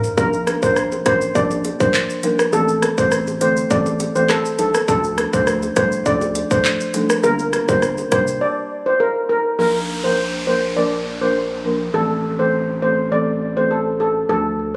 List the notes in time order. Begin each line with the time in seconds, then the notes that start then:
0.04 floor tom, shaker
0.17 A#1 F3 A#3 D4 A#4, kick, high bongo, shaker
0.33 shaker
0.47 cross-stick, closed hi-hat, high bongo, shaker
0.62 A#1 F3 A#3 D4 A#4 C5, kick, shaker
0.76 cross-stick, shaker
0.92 high bongo, shaker
1.06 A1 F3 A#3 D4 A#4 C5, kick, cross-stick, closed hi-hat, shaker
1.21 shaker
1.35 A#1 F3 A#3 D4 A#4 D5, kick, high bongo, shaker
1.51 high bongo, shaker
1.65 closed hi-hat, high bongo, shaker
1.80 C2 F3 A#3 D4 A#4 C5, kick, shaker
1.94 clap, shaker
2.10 shaker
2.23 F3 A#3 D4 A#4, closed hi-hat, low bongo, shaker
2.39 cross-stick, shaker
2.53 A1 E3 A3 C4 A4, high bongo, shaker
2.68 shaker
2.82 cross-stick, closed hi-hat, high bongo, shaker
2.98 A1 E3 A3 C4 A4 C5, kick, shaker
3.12 cross-stick, shaker
3.27 high bongo, shaker
3.41 G1 E3 A3 C4 A4 C5, closed hi-hat, shaker
3.57 shaker
3.70 A1 E3 A3 C4 A4 D5, kick, high bongo, shaker
3.86 high bongo, shaker
4.00 closed hi-hat, high bongo, shaker
4.15 A1 E3 A3 C4 A4 C5, shaker
4.30 A4, cross-stick, clap, shaker
4.45 shaker
4.59 A#1 A4, closed hi-hat, low bongo, shaker
4.75 cross-stick, shaker
4.88 D2 F3 A3 D4 A4, kick, high bongo, shaker
5.04 shaker
5.18 cross-stick, closed hi-hat, high bongo, shaker
5.33 D2 F3 A3 D4 A4 C5, kick, shaker
5.47 cross-stick, shaker
5.63 high bongo, shaker
5.76 C2 F3 A3 D4 A4 C5, kick, cross-stick, closed hi-hat, shaker
5.92 shaker
6.06 D2 F3 A3 D4 A4 D5, kick, high bongo, shaker
6.21 high bongo, shaker
6.35 closed hi-hat, high bongo, shaker
6.51 D2 F3 A3 D4 A4 C5, kick, shaker
6.65 clap, shaker
6.81 shaker
6.94 F3 A3 D4 A4, closed hi-hat, low bongo, shaker
7.10 cross-stick, shaker
7.23 G1 G3 A#3 D4 A#4, high bongo, shaker
7.39 shaker
7.53 cross-stick, closed hi-hat, high bongo, shaker
7.68 G1 G3 A#3 D4 A#4 C5, kick, high bongo, shaker
7.82 cross-stick, shaker
7.98 high bongo, shaker
8.11 F1 G3 A#3 D4 A#4 C5, kick, cross-stick, closed hi-hat, shaker
8.27 shaker
8.41 D5
8.86 C5
9.00 A#4
9.29 A#4
9.59 A#1 F3 A#3 D4 A#4, downlifter
10.04 F3 A#3 D4 A#4 C5
10.47 F3 A#3 D4 A#4 C5
10.76 F3 A#3 D4 A#4 D5
11.21 F3 A#3 D4 A#4 C5
11.64 F3 A#3 D4 A#4
11.94 A1 E3 A3 C4 A4
12.39 E3 A3 C4 A4 C5
12.82 E3 A3 C4 A4 C5
13.12 E3 A3 C4 A4 D5
13.57 E3 A3 C4 A4 C5
13.71 A4
14.00 A4
14.29 D2 F3 A3 D4 A4